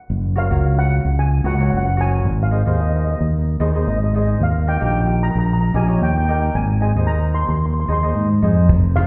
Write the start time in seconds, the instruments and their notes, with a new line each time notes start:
0.10 fingered electric bass F#1
0.36 cavaquinho F#4 A#4 C#5, steel pan F5
0.51 fingered electric bass C#2, cavaquinho F#4 A#4 C#5
0.79 steel pan F#5
1.05 fingered electric bass C#2
1.19 steel pan G#5
1.44 fingered electric bass C#2, cavaquinho F#4 A#4 C#5, steel pan F#5
1.55 cavaquinho F#4, steel pan F#5
1.59 cavaquinho A#4 C#5, steel pan F#5
1.70 fingered electric bass F#1, steel pan F#5
1.77 steel pan F#5
1.85 steel pan F#5
1.97 cavaquinho F#4 A#4 C#5, steel pan G#5
2.25 fingered electric bass G#1
2.43 steel pan F5
2.51 cavaquinho D#4 G#4 C5
2.66 fingered electric bass D#2, cavaquinho D#4 G#4 C5
2.81 steel pan D#5
2.89 steel pan D#5
2.97 steel pan D#5
3.05 steel pan D#5
3.11 steel pan D#5
3.19 fingered electric bass D#2, steel pan D#5
3.60 fingered electric bass D#2, cavaquinho D#4 G#4 C5
3.74 cavaquinho D#4 G#4 C5
3.87 fingered electric bass G#1, steel pan D#5
3.97 steel pan D#5
4.04 steel pan D#5
4.13 cavaquinho D#4 G#4 C5, steel pan D#5
4.19 steel pan D#5
4.28 steel pan D#5
4.40 fingered electric bass D#2, steel pan F5
4.67 cavaquinho D#4 G4 A#4, steel pan G5
4.77 cavaquinho D#4 G4 A#4, steel pan G5
4.82 fingered electric bass A#1
4.86 steel pan G5
4.93 steel pan G5
5.01 steel pan G5
5.07 steel pan G5
5.23 steel pan A#5
5.31 steel pan A#5
5.35 fingered electric bass A#1, steel pan A#5
5.46 steel pan A#5
5.53 steel pan A#5
5.61 steel pan A#5
5.74 fingered electric bass A#1, cavaquinho D#4 G4 A#4, steel pan G#5
5.87 cavaquinho D#4 G4 C#5
6.01 fingered electric bass D#2, steel pan G5
6.10 steel pan G5
6.18 steel pan G5
6.25 cavaquinho D#4 G4, steel pan G5
6.30 cavaquinho A#4, steel pan G5
6.40 steel pan G5
6.55 fingered electric bass G#1, steel pan G#5
6.81 cavaquinho D#4 G#4 C5, steel pan G#5
6.96 fingered electric bass D#2, cavaquinho D#4 G#4 C5
7.07 steel pan A#5
7.34 steel pan C6
7.42 steel pan C6
7.49 fingered electric bass D#2, steel pan C6
7.57 steel pan C6
7.66 steel pan C6
7.74 steel pan C6
7.80 steel pan C6
7.86 fingered electric bass D#2, cavaquinho D#4 G#4 C5, steel pan C6
7.92 steel pan C6
8.01 cavaquinho D#4 G#4 C5, steel pan C6
8.15 fingered electric bass G#2
8.42 fingered electric bass F2, cavaquinho D#4 G#4 C5
8.69 fingered electric bass F1, kick, closed hi-hat
8.96 cavaquinho F4 G#4 C5, steel pan F5, cross-stick, closed hi-hat